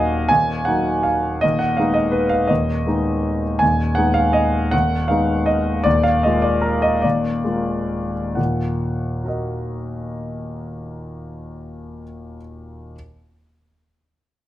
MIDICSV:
0, 0, Header, 1, 2, 480
1, 0, Start_track
1, 0, Key_signature, -6, "minor"
1, 0, Tempo, 378310
1, 369, Time_signature, 3, 2, 24, 8
1, 1811, Tempo, 363196
1, 5171, Tempo, 377834
1, 8051, Tempo, 401070
1, 9491, Tempo, 467654
1, 10451, Tempo, 423729
1, 12851, Tempo, 384862
1, 17818, End_track
2, 0, Start_track
2, 0, Title_t, "Grand piano"
2, 0, Program_c, 0, 0
2, 0, Control_c, 0, 64, 127
2, 0, Note_on_c, 0, 27, 42
2, 0, Note_on_c, 0, 39, 49
2, 0, Note_on_c, 0, 54, 33
2, 0, Note_on_c, 0, 58, 32
2, 0, Note_on_c, 0, 63, 31
2, 0, Note_on_c, 0, 75, 64
2, 0, Note_on_c, 0, 77, 71
2, 0, Note_on_c, 0, 78, 54
2, 0, Note_on_c, 0, 80, 76
2, 327, Note_off_c, 0, 54, 0
2, 329, Note_off_c, 0, 58, 0
2, 331, Note_off_c, 0, 63, 0
2, 356, Note_off_c, 0, 75, 0
2, 362, Note_off_c, 0, 80, 0
2, 362, Note_on_c, 0, 80, 77
2, 383, Note_off_c, 0, 27, 0
2, 383, Note_on_c, 0, 27, 39
2, 385, Note_off_c, 0, 39, 0
2, 385, Note_on_c, 0, 39, 43
2, 395, Control_c, 0, 64, 0
2, 396, Note_off_c, 0, 77, 0
2, 403, Note_off_c, 0, 78, 0
2, 608, Control_c, 0, 64, 127
2, 825, Note_on_c, 0, 78, 58
2, 839, Note_off_c, 0, 27, 0
2, 840, Note_off_c, 0, 39, 0
2, 843, Note_off_c, 0, 80, 0
2, 854, Note_on_c, 0, 54, 32
2, 862, Note_on_c, 0, 58, 29
2, 863, Note_on_c, 0, 63, 33
2, 1310, Note_on_c, 0, 77, 53
2, 1331, Note_off_c, 0, 78, 0
2, 1764, Note_off_c, 0, 54, 0
2, 1767, Note_off_c, 0, 58, 0
2, 1768, Note_off_c, 0, 63, 0
2, 1791, Note_on_c, 0, 75, 71
2, 1794, Note_off_c, 0, 77, 0
2, 1822, Note_on_c, 0, 27, 40
2, 1823, Note_on_c, 0, 39, 49
2, 1836, Control_c, 0, 64, 0
2, 2017, Control_c, 0, 64, 127
2, 2024, Note_on_c, 0, 78, 59
2, 2031, Note_off_c, 0, 75, 0
2, 2260, Note_on_c, 0, 77, 55
2, 2270, Note_off_c, 0, 27, 0
2, 2270, Note_off_c, 0, 78, 0
2, 2271, Note_off_c, 0, 39, 0
2, 2286, Note_on_c, 0, 56, 29
2, 2291, Note_on_c, 0, 59, 28
2, 2299, Note_on_c, 0, 63, 37
2, 2484, Note_on_c, 0, 75, 61
2, 2512, Note_off_c, 0, 77, 0
2, 2721, Note_on_c, 0, 71, 54
2, 2743, Note_off_c, 0, 75, 0
2, 2956, Note_on_c, 0, 77, 64
2, 2977, Note_off_c, 0, 71, 0
2, 3178, Note_off_c, 0, 56, 0
2, 3180, Note_off_c, 0, 59, 0
2, 3184, Note_off_c, 0, 63, 0
2, 3195, Note_on_c, 0, 75, 55
2, 3207, Note_off_c, 0, 77, 0
2, 3223, Note_on_c, 0, 39, 47
2, 3225, Note_on_c, 0, 27, 37
2, 3249, Control_c, 0, 64, 0
2, 3459, Control_c, 0, 64, 127
2, 3693, Note_off_c, 0, 39, 0
2, 3694, Note_off_c, 0, 27, 0
2, 3710, Note_on_c, 0, 56, 32
2, 3718, Note_on_c, 0, 59, 29
2, 3730, Note_on_c, 0, 63, 36
2, 4447, Note_off_c, 0, 75, 0
2, 4647, Note_off_c, 0, 56, 0
2, 4651, Note_off_c, 0, 59, 0
2, 4657, Note_off_c, 0, 63, 0
2, 4669, Note_on_c, 0, 80, 65
2, 4699, Note_on_c, 0, 39, 43
2, 4702, Note_on_c, 0, 27, 44
2, 4724, Control_c, 0, 64, 0
2, 4923, Control_c, 0, 64, 127
2, 5144, Note_on_c, 0, 78, 63
2, 5156, Note_off_c, 0, 80, 0
2, 5157, Note_off_c, 0, 39, 0
2, 5159, Note_off_c, 0, 27, 0
2, 5169, Note_on_c, 0, 56, 31
2, 5174, Note_on_c, 0, 59, 33
2, 5179, Note_on_c, 0, 63, 39
2, 5386, Note_on_c, 0, 77, 72
2, 5397, Note_off_c, 0, 78, 0
2, 5628, Note_on_c, 0, 75, 65
2, 5643, Note_off_c, 0, 77, 0
2, 6080, Note_off_c, 0, 56, 0
2, 6082, Note_off_c, 0, 59, 0
2, 6085, Note_off_c, 0, 63, 0
2, 6117, Note_on_c, 0, 78, 75
2, 6118, Note_off_c, 0, 75, 0
2, 6141, Note_on_c, 0, 39, 47
2, 6142, Note_on_c, 0, 27, 44
2, 6156, Control_c, 0, 64, 0
2, 6388, Control_c, 0, 64, 127
2, 6580, Note_on_c, 0, 77, 62
2, 6582, Note_off_c, 0, 39, 0
2, 6583, Note_off_c, 0, 27, 0
2, 6583, Note_off_c, 0, 78, 0
2, 6603, Note_on_c, 0, 56, 32
2, 6615, Note_on_c, 0, 59, 31
2, 6616, Note_on_c, 0, 63, 36
2, 7062, Note_on_c, 0, 75, 61
2, 7078, Note_off_c, 0, 77, 0
2, 7517, Note_off_c, 0, 56, 0
2, 7523, Note_off_c, 0, 59, 0
2, 7524, Note_off_c, 0, 63, 0
2, 7542, Note_on_c, 0, 74, 79
2, 7551, Note_off_c, 0, 75, 0
2, 7565, Note_on_c, 0, 39, 51
2, 7573, Note_on_c, 0, 27, 42
2, 7587, Control_c, 0, 64, 0
2, 7792, Note_off_c, 0, 74, 0
2, 7794, Note_on_c, 0, 77, 66
2, 7797, Control_c, 0, 64, 127
2, 8038, Note_off_c, 0, 39, 0
2, 8042, Note_off_c, 0, 27, 0
2, 8046, Note_on_c, 0, 75, 62
2, 8047, Note_off_c, 0, 77, 0
2, 8070, Note_on_c, 0, 56, 34
2, 8079, Note_on_c, 0, 58, 32
2, 8083, Note_on_c, 0, 65, 35
2, 8272, Note_on_c, 0, 74, 67
2, 8286, Note_off_c, 0, 75, 0
2, 8503, Note_on_c, 0, 70, 59
2, 8519, Note_off_c, 0, 74, 0
2, 8749, Note_on_c, 0, 75, 66
2, 8755, Note_off_c, 0, 70, 0
2, 8968, Note_off_c, 0, 56, 0
2, 8973, Note_off_c, 0, 58, 0
2, 8975, Note_off_c, 0, 65, 0
2, 8988, Note_on_c, 0, 74, 55
2, 8997, Note_off_c, 0, 75, 0
2, 9013, Note_on_c, 0, 27, 38
2, 9015, Note_on_c, 0, 39, 45
2, 9034, Control_c, 0, 64, 0
2, 9231, Control_c, 0, 64, 127
2, 9480, Note_off_c, 0, 27, 0
2, 9481, Note_off_c, 0, 39, 0
2, 9493, Note_on_c, 0, 56, 31
2, 9501, Note_on_c, 0, 58, 33
2, 9509, Note_on_c, 0, 65, 33
2, 10205, Note_off_c, 0, 74, 0
2, 10410, Note_off_c, 0, 56, 0
2, 10414, Note_off_c, 0, 58, 0
2, 10418, Note_off_c, 0, 65, 0
2, 10427, Note_on_c, 0, 78, 38
2, 10443, Note_on_c, 0, 46, 32
2, 10444, Note_on_c, 0, 39, 35
2, 10476, Control_c, 0, 64, 0
2, 10695, Control_c, 0, 64, 127
2, 11427, Note_on_c, 0, 66, 26
2, 11447, Note_on_c, 0, 70, 29
2, 11477, Note_on_c, 0, 75, 25
2, 14746, Note_off_c, 0, 78, 0
2, 14765, Note_off_c, 0, 46, 0
2, 14766, Note_off_c, 0, 39, 0
2, 15181, Note_off_c, 0, 66, 0
2, 15192, Note_off_c, 0, 70, 0
2, 15208, Note_off_c, 0, 75, 0
2, 15914, Control_c, 0, 64, 0
2, 17818, End_track
0, 0, End_of_file